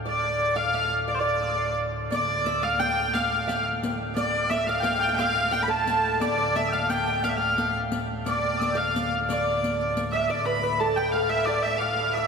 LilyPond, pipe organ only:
\new Staff \with { instrumentName = "Pipe organ" } { \clef bass \time 6/8 \key d \dorian \tempo 4. = 117 <d, a,>2.~ | <d, a,>2. | <d, a,>2.~ | <d, a,>2.~ |
<d, a,>2.~ | <d, a,>2. | <d, a,>2.~ | <d, a,>2.~ |
<d, a,>2.~ | <d, a,>2. | <d, a,>2.~ | <d, a,>2. | }